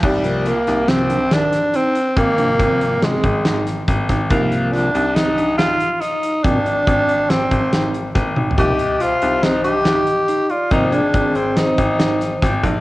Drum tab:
CC |x-----------------------------|------------------------------|------------------------------|------------------------------|
HH |---x--x--x--x--x--x--x--x--x--|x--x--x--x--x--x--x--x--x--x--|x--x--x--x--x--x--x--x--x--x--|x--x--x--x--x--x--x--x--x-----|
SD |---------o--o-----o--o--------|------------o-----o--o-----o--|------o-----o-----o-----------|------------o-----o-----o-----|
T1 |------------------------------|------------------------------|------------------------------|---------------------------o--|
FT |------------------------------|------------------------------|------------------------------|-----------------------------o|
BD |o-----------------------------|o-----o--------o--------o--o--|o-----------------------------|o-----o--------o--------o-----|

CC |------------------------------|------------------------------|
HH |x--x--x--x--x--x--x--x--x--x--|x--x--x--x--x--x--x--x--x--x--|
SD |------------o-----o-----------|------------o-----o--o--o-----|
T1 |------------------------------|------------------------------|
FT |------------------------------|------------------------------|
BD |o-----------------------------|o-----o--------o--------o--o--|